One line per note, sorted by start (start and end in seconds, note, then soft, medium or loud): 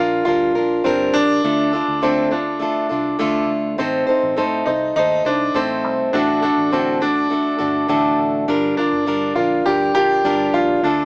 0.00 0.22 A#1 medium
0.00 0.25 D4 soft
0.00 0.24 F4 medium
0.00 0.26 F4 soft
0.00 0.26 A#4 soft
0.25 0.56 D2 medium
0.25 0.55 G3 soft
0.25 0.56 D4 medium
0.25 0.86 F4 medium
0.25 0.55 F4 soft
0.25 0.54 A#4 medium
0.55 0.80 A#1 medium
0.55 0.84 D4 soft
0.55 0.85 F4 soft
0.55 0.85 A#4 soft
0.84 1.10 G1 medium
0.84 1.44 G3 medium
0.84 1.15 C4 medium
0.84 1.44 D4 medium
0.84 1.45 F4 medium
0.84 1.45 A#4 medium
1.14 1.39 A#1 medium
1.14 2.05 D4 loud
1.44 1.80 D2 loud
1.44 1.74 D3 medium
1.44 1.74 A3 medium
1.44 1.74 D4 medium
1.44 1.73 F4 medium
1.44 1.72 A4 medium
1.73 2.02 D4 soft
1.73 2.02 F4 soft
1.73 2.03 A4 medium
1.88 2.87 D2 medium
2.02 2.32 D3 medium
2.02 2.32 A3 medium
2.02 2.30 C4 medium
2.02 2.32 D4 medium
2.02 2.31 F4 medium
2.02 2.30 A4 medium
2.31 3.45 D4 medium
2.31 2.60 D4 soft
2.31 2.61 F4 soft
2.31 2.61 A4 soft
2.60 2.90 A3 medium
2.60 2.91 D4 medium
2.60 2.90 F4 medium
2.60 2.88 A4 medium
2.89 3.15 C2 medium
2.89 3.19 D4 soft
2.89 3.19 F4 soft
2.89 3.20 A4 medium
3.19 3.45 D2 medium
3.19 3.78 D3 medium
3.19 3.78 A3 medium
3.19 3.79 D4 medium
3.19 3.79 F4 medium
3.19 3.80 A4 medium
3.50 3.74 D2 medium
3.78 4.03 A1 medium
3.78 4.08 A3 medium
3.78 4.70 C4 medium
3.78 4.08 D#4 medium
3.78 4.08 A4 medium
3.78 4.06 C5 medium
4.07 4.36 D#4 soft
4.07 4.37 A4 soft
4.07 4.37 C5 soft
4.23 4.39 A1 medium
4.36 4.62 A2 medium
4.36 4.67 A3 medium
4.36 4.67 D#4 medium
4.36 4.67 A4 medium
4.36 4.66 C5 medium
4.66 4.91 C2 medium
4.66 4.94 D#4 medium
4.66 4.97 A4 soft
4.66 4.96 C5 soft
4.70 4.96 D#4 soft
4.96 5.20 D#2 medium
4.96 5.26 A3 soft
4.96 5.27 D#4 medium
4.96 5.26 A4 medium
4.96 5.24 C5 medium
5.25 5.50 C2 medium
5.25 5.56 D4 medium
5.25 5.54 D#4 soft
5.25 5.55 A4 soft
5.25 5.55 C5 soft
5.54 5.84 A1 medium
5.54 6.14 A3 medium
5.54 6.16 C4 medium
5.54 6.14 D#4 medium
5.54 6.15 A4 medium
5.54 6.15 C5 medium
5.84 6.08 C2 medium
6.13 6.50 A1 medium
6.13 6.43 A2 medium
6.13 6.43 D3 medium
6.13 6.43 A3 medium
6.13 6.41 D4 medium
6.13 6.43 D4 medium
6.13 6.43 F#4 medium
6.13 6.41 A4 medium
6.42 6.71 A3 soft
6.42 6.73 D4 medium
6.42 6.72 D4 soft
6.42 6.72 F#4 soft
6.42 6.72 A4 medium
6.57 7.56 A1 medium
6.72 7.02 A2 medium
6.72 7.02 D3 medium
6.72 7.02 A3 medium
6.72 7.00 C4 medium
6.72 7.02 D4 medium
6.72 7.01 F#4 medium
6.72 7.00 A4 medium
7.01 7.29 A3 soft
7.01 8.15 D4 medium
7.01 7.30 D4 soft
7.01 7.30 F#4 soft
7.01 7.31 A4 soft
7.30 7.60 A3 soft
7.30 7.59 D4 medium
7.30 7.58 F#4 medium
7.30 7.57 A4 medium
7.59 7.85 G1 medium
7.59 7.88 A3 soft
7.59 7.88 D4 soft
7.59 7.89 F#4 soft
7.59 7.89 A4 soft
7.88 8.14 A1 medium
7.88 8.48 A2 medium
7.88 10.83 D3 medium
7.88 8.48 A3 medium
7.88 8.48 D4 medium
7.88 8.49 F#4 medium
7.88 8.49 A4 medium
8.19 8.43 A1 medium
8.48 8.72 G1 medium
8.48 8.78 G3 medium
8.48 8.78 D4 medium
8.48 8.78 F4 medium
8.48 8.76 A#4 medium
8.77 9.32 D4 medium
8.77 9.06 D4 soft
8.77 9.06 F4 soft
8.77 9.07 A#4 soft
8.92 9.05 G1 medium
9.06 9.32 G2 medium
9.06 9.36 G3 medium
9.06 9.37 D4 medium
9.06 9.37 F4 medium
9.06 9.35 A#4 medium
9.36 9.61 A#1 medium
9.36 9.65 D4 soft
9.36 9.67 F4 medium
9.36 9.67 F4 soft
9.36 9.66 A#4 medium
9.66 9.95 D2 medium
9.66 9.96 G3 medium
9.66 9.96 D4 medium
9.66 9.95 F4 medium
9.66 9.93 G4 medium
9.66 9.94 A#4 medium
9.95 10.20 A#1 medium
9.95 10.24 D4 soft
9.95 10.25 F4 medium
9.95 10.56 G4 loud
9.95 10.25 A#4 soft
10.24 10.49 G1 medium
10.24 10.84 G3 medium
10.24 10.84 D4 medium
10.24 10.85 F4 medium
10.24 10.85 A#4 medium
10.54 10.78 A#1 medium
10.54 10.84 F4 medium
10.83 11.05 D2 medium
10.83 11.05 D3 medium
10.83 11.05 A3 medium
10.83 11.05 D4 medium
10.83 11.05 F4 medium
10.83 11.05 A4 medium